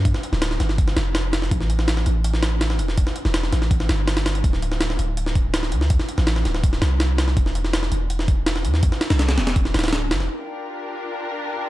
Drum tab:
HH |x---x---x---x---x---x---x---x---|x---x---x---x---x---x---x---x---|x---x---x---x---x---x---x-x-x-x-|x---x---x---x---x---x---x---x---|
SD |--o---o-o-o-o-o---o-o---o---o-o-|--o---o-o-o-------o-o---o-o---o-|--o---o-o-o-o-o---o-o---o-o-o---|--o---o-o-o-------o-----o-o---o-|
BD |o---------------o---------------|o-------------------------------|o---------------o---------------|o-------------------o-----------|

HH |x---x---x---x---x---x---x---x---|x---x---x---x---x---x---x---x---|x---x-x-x-x-x-x-x---xxxxx---x---|--------------------------------|
SD |--o---o-o-o-o-o---o-o---o---o-o-|--o---o-o-o-------o-----o-o---o-|--o-o-o-o-o-o-o---o-ooooo---o-o-|--------------------------------|
BD |o---------------o---------------|o-------------------o-----------|o---------------o---------------|--------------------------------|